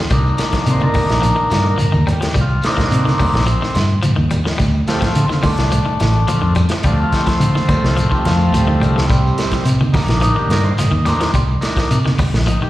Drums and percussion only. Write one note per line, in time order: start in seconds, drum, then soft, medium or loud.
0.10 kick medium
0.10 closed hi-hat medium
0.10 shekere medium
0.26 shekere soft
0.38 snare medium
0.38 closed hi-hat medium
0.38 shekere medium
0.53 kick medium
0.53 snare medium
0.53 closed hi-hat soft
0.53 shekere soft
0.66 closed hi-hat medium
0.66 shekere medium
0.80 high conga medium
0.80 shekere soft
0.94 kick medium
0.94 snare soft
0.94 open hi-hat medium
0.94 high conga medium
0.94 low conga medium
0.94 shekere medium
1.09 snare medium
1.09 closed hi-hat medium
1.09 shekere soft
1.23 closed hi-hat medium
1.23 high conga soft
1.23 shekere medium
1.37 shekere soft
1.50 snare medium
1.50 closed hi-hat soft
1.50 high conga medium
1.50 shekere medium
1.64 shekere soft
1.78 closed hi-hat medium
1.78 high conga medium
1.78 shekere medium
1.93 high conga medium
1.93 shekere soft
2.07 closed hi-hat soft
2.07 low conga medium
2.07 shekere medium
2.22 snare medium
2.22 closed hi-hat medium
2.22 shekere soft
2.34 kick medium
2.34 closed hi-hat medium
2.34 high conga soft
2.34 shekere medium
2.49 shekere soft
2.62 snare medium
2.62 closed hi-hat medium
2.62 shekere medium
2.77 kick medium
2.77 snare medium
2.77 closed hi-hat soft
2.77 low conga medium
2.77 shekere soft
2.90 closed hi-hat medium
2.90 shekere medium
3.05 snare soft
3.05 high conga medium
3.05 shekere soft
3.19 kick medium
3.19 open hi-hat medium
3.19 high conga medium
3.19 low conga medium
3.19 shekere medium
3.33 snare medium
3.33 shekere soft
3.46 closed hi-hat medium
3.46 high conga soft
3.46 shekere medium
3.61 snare soft
3.61 shekere soft
3.75 snare medium
3.75 closed hi-hat soft
3.75 high conga medium
3.75 shekere medium
3.89 shekere soft
4.03 closed hi-hat medium
4.03 high conga medium
4.03 shekere medium
4.17 high conga medium
4.17 shekere soft
4.31 closed hi-hat soft
4.31 low conga medium
4.31 shekere medium
4.46 snare medium
4.46 shekere soft
4.60 kick medium
4.60 snare soft
4.60 closed hi-hat medium
4.60 shekere medium
4.74 shekere soft
4.87 snare medium
4.87 closed hi-hat medium
4.87 shekere medium
5.02 kick medium
5.02 snare medium
5.02 closed hi-hat medium
5.02 low conga medium
5.02 shekere soft
5.15 closed hi-hat medium
5.15 high conga soft
5.15 shekere medium
5.30 snare soft
5.30 high conga medium
5.30 shekere soft
5.43 kick medium
5.43 open hi-hat medium
5.43 high conga medium
5.43 low conga medium
5.43 shekere medium
5.58 snare medium
5.58 closed hi-hat medium
5.58 shekere soft
5.71 closed hi-hat medium
5.71 high conga soft
5.71 shekere medium
5.87 shekere soft
6.00 snare medium
6.00 closed hi-hat soft
6.00 high conga medium
6.00 shekere medium
6.15 shekere soft
6.28 closed hi-hat medium
6.28 high conga medium
6.28 shekere medium
6.44 shekere soft
6.55 closed hi-hat soft
6.55 low conga medium
6.55 shekere medium
6.69 snare medium
6.69 closed hi-hat medium
6.69 shekere soft
6.83 kick medium
6.83 closed hi-hat medium
6.83 shekere medium
7.00 shekere soft
7.12 kick medium
7.12 snare medium
7.12 closed hi-hat medium
7.12 shekere medium
7.27 kick medium
7.27 snare medium
7.27 closed hi-hat soft
7.27 shekere soft
7.40 closed hi-hat medium
7.40 high conga soft
7.40 shekere medium
7.55 snare soft
7.55 high conga medium
7.55 shekere soft
7.69 kick medium
7.69 closed hi-hat soft
7.69 high conga loud
7.69 low conga medium
7.69 shekere medium
7.84 snare medium
7.84 shekere soft
7.97 closed hi-hat medium
7.97 shekere medium
8.12 kick medium
8.12 shekere soft
8.25 snare medium
8.25 closed hi-hat soft
8.25 high conga medium
8.25 shekere medium
8.40 shekere soft
8.54 closed hi-hat medium
8.54 high conga medium
8.54 shekere medium
8.69 shekere soft
8.81 closed hi-hat soft
8.81 low conga medium
8.81 shekere medium
8.97 snare medium
8.97 shekere soft
9.10 kick medium
9.10 closed hi-hat medium
9.10 high conga soft
9.10 shekere medium
9.26 shekere soft
9.38 snare medium
9.38 closed hi-hat medium
9.38 shekere medium
9.51 kick medium
9.51 snare medium
9.51 closed hi-hat soft
9.51 shekere soft
9.65 closed hi-hat medium
9.65 high conga soft
9.65 shekere medium
9.81 high conga medium
9.81 shekere soft
9.94 kick medium
9.94 snare soft
9.94 open hi-hat medium
9.94 high conga medium
9.94 low conga medium
9.94 shekere medium
10.08 snare medium
10.08 closed hi-hat soft
10.08 shekere soft
10.22 closed hi-hat medium
10.22 high conga soft
10.22 shekere medium
10.38 shekere soft
10.50 snare medium
10.50 closed hi-hat soft
10.50 high conga medium
10.50 shekere medium
10.66 shekere soft
10.78 snare soft
10.78 closed hi-hat medium
10.78 high conga medium
10.78 shekere medium
10.93 shekere soft
11.06 snare soft
11.06 closed hi-hat soft
11.06 low conga medium
11.06 shekere medium
11.20 snare medium
11.20 closed hi-hat medium
11.20 shekere soft
11.34 kick medium
11.34 closed hi-hat medium
11.34 high conga soft
11.34 shekere medium
11.48 shekere soft
11.62 snare medium
11.62 closed hi-hat medium
11.62 shekere medium
11.77 kick medium
11.77 snare medium
11.77 closed hi-hat soft
11.77 shekere soft
11.91 closed hi-hat medium
11.91 high conga soft
11.91 shekere medium
12.05 snare soft
12.05 high conga medium
12.05 shekere soft
12.19 kick medium
12.19 open hi-hat medium
12.19 high conga medium
12.19 low conga medium
12.19 shekere medium
12.34 snare medium
12.34 shekere soft
12.46 closed hi-hat medium
12.46 high conga soft
12.46 shekere medium
12.62 shekere soft